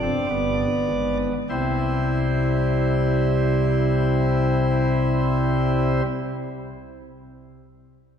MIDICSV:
0, 0, Header, 1, 2, 480
1, 0, Start_track
1, 0, Tempo, 1176471
1, 609, Time_signature, 3, 2, 24, 8
1, 610, Tempo, 1252610
1, 3175, End_track
2, 0, Start_track
2, 0, Title_t, "Pipe organ"
2, 0, Program_c, 0, 19
2, 0, Note_on_c, 0, 74, 89
2, 9, Note_on_c, 0, 60, 84
2, 107, Note_off_c, 0, 60, 0
2, 123, Note_on_c, 0, 31, 85
2, 123, Note_on_c, 0, 43, 83
2, 123, Note_on_c, 0, 59, 82
2, 269, Note_off_c, 0, 31, 0
2, 270, Note_off_c, 0, 43, 0
2, 359, Note_on_c, 0, 32, 73
2, 359, Note_on_c, 0, 44, 73
2, 478, Note_off_c, 0, 74, 0
2, 514, Note_off_c, 0, 32, 0
2, 514, Note_off_c, 0, 44, 0
2, 541, Note_off_c, 0, 59, 0
2, 609, Note_on_c, 0, 48, 77
2, 610, Note_on_c, 0, 64, 74
2, 610, Note_on_c, 0, 72, 75
2, 611, Note_on_c, 0, 36, 75
2, 620, Note_on_c, 0, 55, 61
2, 621, Note_on_c, 0, 60, 66
2, 2340, Note_off_c, 0, 48, 0
2, 2341, Note_off_c, 0, 36, 0
2, 2341, Note_off_c, 0, 64, 0
2, 2341, Note_off_c, 0, 72, 0
2, 2346, Note_off_c, 0, 55, 0
2, 2346, Note_off_c, 0, 60, 0
2, 3175, End_track
0, 0, End_of_file